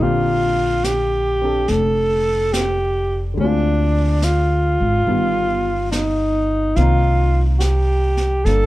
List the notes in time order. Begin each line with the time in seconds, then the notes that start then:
0.00 A#1 D3 A#3 C4 F4 G4
0.84 G4, snare, hi-hat pedal
1.42 C4 D4 A4
1.68 F1 A4, brush sweep, snare
2.53 G4, snare, hi-hat pedal
3.34 D2 D3 G#3
3.38 C4 D4, brush sweep
3.44 F4
4.22 F4, snare, hi-hat pedal
4.80 G#1
5.07 G1 D#3 G3 B3 F4, brush sweep
5.91 D#4, snare, hi-hat pedal
6.75 C2 D#3 A#3 C4 F4, brush sweep, snare
6.80 D#4
7.59 F#4 G4, snare, hi-hat pedal
8.17 snare
8.44 G1 A#3 A4, brush sweep, snare
8.48 D4